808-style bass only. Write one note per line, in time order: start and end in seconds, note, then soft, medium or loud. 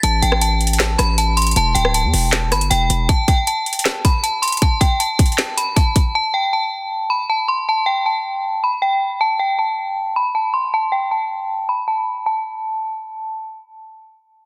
0.03 0.22 A1 loud
0.22 0.96 A1 loud
0.99 1.54 A1 loud
1.56 1.75 E1 loud
1.75 2.05 D1 loud
2.04 2.13 E2 loud
2.13 2.53 E1 loud
2.52 2.70 G1 loud
2.71 2.89 E1 loud
2.90 3.08 E1 loud